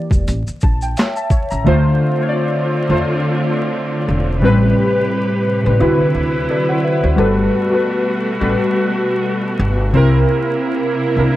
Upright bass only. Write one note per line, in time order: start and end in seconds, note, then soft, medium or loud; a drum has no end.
0.11 0.25 E1 medium
0.28 0.45 A1 medium
0.48 muted upright bass stroke medium
0.64 0.93 A#1 medium
1.52 1.64 A1 medium
1.67 1.96 D2 loud
2.90 3.02 E2 medium
4.08 4.43 E1 medium
4.43 4.73 A1 loud
5.66 5.78 A1 medium
5.80 5.97 D2 medium
6.00 muted upright bass stroke medium
6.15 6.44 D2 medium
7.04 7.16 D2 medium
7.18 7.48 G1 loud
8.41 8.54 A1 medium
9.59 9.89 G1 loud
9.94 10.23 C2 loud
11.17 11.29 C2 medium